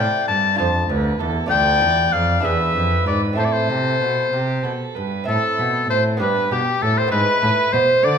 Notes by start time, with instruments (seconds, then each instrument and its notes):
Already playing: lute C4 E4 A4, violin D5, oboe G5
0.00 lute A2
0.28 lute G2, cello G2, oboe A5
0.55 lute D4 F4 A4, oboe A5
0.59 cello F2, lute F2, violin C5
0.88 cello D2, lute D2, violin B4
1.19 cello E2, lute E2, violin A4
1.46 cello D2, lute D4 F4 A4, violin D5
1.50 lute D2, oboe G5
1.81 cello E2, lute E2
2.12 cello F2, lute F2, oboe F5
2.40 cello E2, lute D4 E4 G#4, violin B4
2.44 lute E2, oboe E5
2.74 cello F2, lute F2
3.06 cello G#2, lute G#2, oboe D5
3.33 lute C4 E4 A4, violin A4
3.37 cello A2, lute A2, oboe C5
3.45 oboe D5
3.52 oboe C5
3.69 cello C3, lute C3
4.01 cello B2, lute B2
4.33 cello C3, lute C3, violin G4
4.63 cello B2, lute B2, violin A4
4.95 cello G2, lute G2, violin B4
5.24 cello A2, lute C4 E4
5.28 lute A2, violin A4, oboe A4
5.58 cello B2, lute B2
5.90 cello A2, lute A2, oboe C5, violin C5
6.17 cello G2, lute B3 D4 G4, violin B4
6.21 lute G2, oboe B4
6.51 cello B2, lute B2, violin G4, oboe G4
6.82 lute A2, cello A2, violin A4, oboe A4
6.97 violin C5, oboe C5
7.07 lute B3 E4, oboe B4
7.12 lute G#2, cello G#2, violin B4
7.42 lute A2, cello A2
7.73 cello B2, lute B2, oboe C5, violin C5
8.03 lute D3, cello D3, violin D5, oboe D5